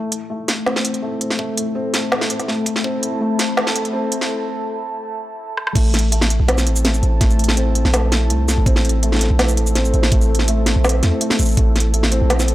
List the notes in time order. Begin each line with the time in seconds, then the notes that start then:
Already playing: A3 E4 A4 A5
0.12 closed hi-hat
0.30 A3
0.48 snare, closed hi-hat
0.66 C4, snare
0.76 snare
0.85 closed hi-hat
0.94 closed hi-hat
1.02 A3
1.21 closed hi-hat
1.30 snare
1.39 A3, kick
1.57 closed hi-hat
1.75 C4
1.94 snare, closed hi-hat
2.11 A3, snare
2.21 snare
2.30 closed hi-hat
2.40 snare, closed hi-hat
2.48 A3, snare
2.66 kick, closed hi-hat
2.76 snare
2.84 C4, kick
3.03 closed hi-hat
3.21 A3
3.39 snare, closed hi-hat
3.57 A3, snare
3.67 snare
3.76 closed hi-hat
3.85 closed hi-hat
3.93 C4
4.12 closed hi-hat
4.21 snare
5.57 cross-stick
5.67 cross-stick
5.75 A1 A3 E4 A4 A5, kick, closed hi-hat, crash
5.94 snare, closed hi-hat
5.99 closed hi-hat
6.12 A3, closed hi-hat
6.21 snare
6.30 closed hi-hat
6.40 A#1
6.48 C4, snare, closed hi-hat
6.58 snare, shaker
6.67 A1, closed hi-hat
6.76 shaker
6.84 A3, snare, closed hi-hat
6.94 shaker
7.03 A1, closed hi-hat
7.21 A3, kick, snare, closed hi-hat
7.31 shaker
7.39 closed hi-hat
7.44 closed hi-hat
7.48 snare
7.57 C4, closed hi-hat
7.75 closed hi-hat
7.85 A#1, snare
7.94 A3, snare, closed hi-hat, shaker
8.12 snare, closed hi-hat
8.30 C2 A3, closed hi-hat
8.48 snare, closed hi-hat, shaker
8.58 A1
8.66 A1 C4 C5, kick, closed hi-hat
8.76 snare
8.85 closed hi-hat
8.89 closed hi-hat
9.03 A3, closed hi-hat
9.12 snare
9.15 snare
9.18 snare
9.21 snare, closed hi-hat
9.24 snare
9.27 A#1, snare
9.39 A3, snare, closed hi-hat
9.49 shaker
9.57 A1, closed hi-hat
9.67 shaker
9.75 C4, snare, closed hi-hat
9.85 shaker
9.94 A1, closed hi-hat
10.03 snare
10.12 A3, kick, closed hi-hat
10.21 shaker
10.35 closed hi-hat
10.39 snare
10.48 A3, closed hi-hat
10.66 snare, closed hi-hat
10.76 A#1
10.84 C4, snare, shaker
10.89 closed hi-hat
11.03 E2, snare, closed hi-hat
11.21 A3, closed hi-hat
11.30 snare
11.39 A1, closed hi-hat, shaker
11.42 shaker
11.45 shaker
11.49 shaker
11.51 shaker
11.55 A1 A3 A5, kick, closed hi-hat, shaker
11.76 snare, closed hi-hat
11.80 closed hi-hat
11.94 A3, closed hi-hat
12.03 snare
12.12 C4, closed hi-hat
12.22 A#1
12.30 snare, closed hi-hat
12.40 snare, shaker
12.48 A1, closed hi-hat